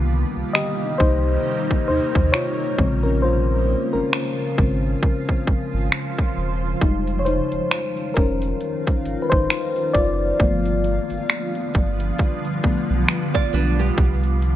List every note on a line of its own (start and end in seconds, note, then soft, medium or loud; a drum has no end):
0.00 0.24 C2 medium
0.00 2.76 C3 medium
0.00 0.95 D#3 medium
0.00 2.76 D#3 medium
0.00 0.95 G3 medium
0.00 2.74 G3 medium
0.00 0.96 A#3 medium
0.00 4.54 A#3 medium
0.00 2.75 D#4 medium
0.36 0.44 C2 soft
0.53 0.97 G4 medium
0.53 0.96 D#5 loud
0.53 finger snap loud
0.98 1.37 C2 medium
0.98 1.86 D#4 medium
0.98 1.87 C5 loud
0.98 kick loud
1.71 kick medium
1.88 1.99 D#2 soft
1.88 2.31 D#4 medium
1.88 2.35 C5 medium
2.15 2.31 D#2 medium
2.15 kick loud
2.32 3.01 F4 medium
2.32 3.06 C#5 loud
2.32 finger snap loud
2.78 3.75 A#1 loud
2.78 4.09 C#3 medium
2.78 6.78 C#3 medium
2.78 10.36 F3 medium
2.78 4.09 G#3 soft
2.78 4.09 C4 medium
2.78 6.78 F4 medium
2.78 kick loud
3.03 3.22 C#4 medium
3.03 3.23 A#4 medium
3.22 3.90 F4 medium
3.22 3.96 C5 medium
3.93 4.01 G#1 soft
3.93 6.33 C#4 medium
3.93 6.32 A#4 medium
4.13 finger snap loud
4.57 4.95 G#1 medium
4.57 4.98 C#3 soft
4.57 4.98 G#3 soft
4.57 4.99 C4 medium
4.57 8.56 C5 medium
4.57 kick loud
5.03 kick loud
5.29 kick medium
5.47 5.58 G#1 soft
5.47 kick medium
5.73 5.89 G#1 medium
5.92 finger snap loud
6.18 kick medium
6.37 6.74 E1 medium
6.81 7.41 F1 loud
6.81 10.37 D#3 medium
6.81 8.12 G3 medium
6.81 8.12 G#3 soft
6.81 7.26 D#4 medium
6.81 13.94 F4 medium
6.81 kick loud
6.81 closed hi-hat medium
7.07 closed hi-hat soft
7.19 7.26 C#5 medium
7.25 8.12 D#4 medium
7.25 8.18 C5 medium
7.25 closed hi-hat medium
7.52 7.60 F1 soft
7.52 closed hi-hat soft
7.71 finger snap loud
7.71 closed hi-hat medium
7.97 closed hi-hat soft
8.14 8.54 F1 medium
8.14 9.20 C#4 medium
8.14 9.26 A#4 medium
8.14 kick loud
8.14 closed hi-hat medium
8.42 closed hi-hat medium
8.60 10.38 A#3 medium
8.60 closed hi-hat medium
8.87 kick medium
8.87 closed hi-hat soft
9.05 9.16 G#1 soft
9.05 closed hi-hat medium
9.22 9.31 B4 medium
9.30 9.47 G#1 medium
9.30 9.92 D#4 medium
9.30 9.96 C5 medium
9.30 kick loud
9.50 finger snap loud
9.50 closed hi-hat medium
9.76 closed hi-hat soft
9.93 10.32 F#1 medium
9.93 11.71 F4 medium
9.93 11.69 D5 loud
9.93 kick medium
9.93 closed hi-hat medium
10.39 10.99 G1 loud
10.39 13.95 D3 medium
10.39 11.02 F3 medium
10.39 13.95 F3 medium
10.39 14.56 G3 medium
10.39 11.02 A3 medium
10.39 13.95 B3 medium
10.39 11.03 B3 medium
10.39 kick loud
10.39 closed hi-hat medium
10.65 closed hi-hat soft
10.84 closed hi-hat medium
11.10 11.18 G1 soft
11.10 closed hi-hat soft
11.29 finger snap loud
11.29 closed hi-hat medium
11.55 closed hi-hat soft
11.74 12.12 G1 medium
11.74 kick loud
11.74 closed hi-hat medium
12.00 closed hi-hat medium
12.18 kick medium
12.18 closed hi-hat medium
12.45 closed hi-hat soft
12.63 12.74 B1 soft
12.63 13.04 F3 soft
12.63 13.04 A3 soft
12.63 13.04 B3 medium
12.63 kick medium
12.63 closed hi-hat medium
12.90 13.05 B1 medium
13.08 finger snap loud
13.08 closed hi-hat medium
13.34 13.53 F4 medium
13.34 13.52 D5 medium
13.34 kick medium
13.34 closed hi-hat soft
13.53 13.91 B1 medium
13.53 13.78 D4 medium
13.53 13.78 B4 medium
13.53 closed hi-hat medium
13.79 14.22 B3 medium
13.79 14.22 G4 medium
13.98 14.56 C2 medium
13.98 14.56 C3 medium
13.98 14.56 D#3 medium
13.98 14.56 A#3 medium
13.98 14.56 D#4 medium
13.98 kick loud
13.98 closed hi-hat medium
14.23 closed hi-hat soft
14.42 closed hi-hat medium